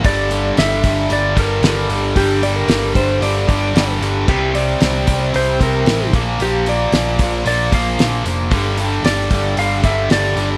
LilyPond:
<<
  \new Staff \with { instrumentName = "Electric slide guitar" } { \time 4/4 \key g \dorian \tempo 4 = 113 d''4 e''4 d''8 bes'4 r8 | g'8 d''16 bes'8. c''8 d''4. r8 | g'8 d''4. c''8 bes'4 r8 | g'8 d''4. d''8 f''4 r8 |
r4 d''4 f''8 e''8 d''8. r16 | }
  \new Staff \with { instrumentName = "Distorted electric guitar" } { \clef bass \time 4/4 \key g \dorian <g, d g>2~ <g, d g>8 <g, d g>8 <g, d g>4 | <g, d g>2~ <g, d g>8 <g, d g>8 <g, d g>4 | <c g c'>2~ <c g c'>8 <c g c'>8 <c g c'>8 <bes, f bes>8~ | <bes, f bes>2 <bes, f bes>8 <bes, f bes>4 r8 |
<g, d g>2~ <g, d g>8 <g, d g>8 <g, d g>4 | }
  \new Staff \with { instrumentName = "Overdriven electric guitar" } { \clef bass \time 4/4 \key g \dorian <g, d g>8 <g, d g>8 <g, d g>8 <g, d g>8 <g, d g>8 <g, d g>8 <g, d g>8 <g, d g>8 | <g, d g>8 <g, d g>8 <g, d g>8 <g, d g>8 <g, d g>8 <g, d g>8 <g, d g>8 <g, d g>8 | <c g c'>8 <c g c'>8 <c g c'>8 <c g c'>8 <c g c'>8 <c g c'>8 <c g c'>8 <bes, f bes>8 | <bes, f bes>8 <bes, f bes>8 <bes, f bes>8 <bes, f bes>8 <bes, f bes>8 <bes, f bes>8 <bes, f bes>8 <bes, f bes>8 |
<g, d g>8 <g, d g>8 <g, d g>8 <g, d g>8 <g, d g>8 <g, d g>8 <g, d g>8 <g, d g>8 | }
  \new Staff \with { instrumentName = "Overdriven electric guitar" } { \clef bass \time 4/4 \key g \dorian <g, d g>8 <g, d g>8 <g, d g>8 <g, d g>8 <g, d g>8 <g, d g>8 <g, d g>8 <g, d g>8 | <g, d g>8 <g, d g>8 <g, d g>8 <g, d g>8 <g, d g>8 <g, d g>8 <g, d g>8 <g, d g>8 | <c g c'>8 <c g c'>8 <c g c'>8 <c g c'>8 <c g c'>8 <c g c'>8 <c g c'>8 <bes, f bes>8 | <bes, f bes>8 <bes, f bes>8 <bes, f bes>8 <bes, f bes>8 <bes, f bes>8 <bes, f bes>8 <bes, f bes>8 <bes, f bes>8 |
<g, d g>8 <g, d g>8 <g, d g>8 <g, d g>8 <g, d g>8 <g, d g>8 <g, d g>8 <g, d g>8 | }
  \new Staff \with { instrumentName = "Picked electric bass" } { \clef bass \time 4/4 \key g \dorian g,,4 g,,8 g,,8 g,,8 g,,8 g,,8 g,,8 | g,,4 g,,8 g,,8 g,,8 g,,8 g,,8 g,,8 | c,4 c,8 c,8 c,8 c,8 a,,8 bes,,8 | bes,,4 bes,,8 bes,,8 bes,,8 bes,,8 bes,,8 f,,8 |
g,,4 g,,8 g,,8 g,,8 g,,8 g,,8 g,,8 | }
  \new DrumStaff \with { instrumentName = "Drums" } \drummode { \time 4/4 <hho bd>8 hho8 <hho sn>8 <hho bd>8 hho8 <hho bd>8 <hho sn>8 hho8 | <hho bd>8 hho8 <hho sn>8 <hho bd>8 hho8 <hho bd>8 <hho sn>8 hho8 | <cymc bd>8 hho8 <hho sn>8 <hho bd>8 hho8 <hho bd>8 <hho sn>8 <hho bd>8 | hho8 hho8 <hho sn>8 <hho bd>8 hho8 <hho bd>8 <hho sn>8 hho8 |
<hho bd>8 hho8 <hho sn>8 <hho bd>8 hho8 <hho bd>8 <hho sn>8 hho8 | }
>>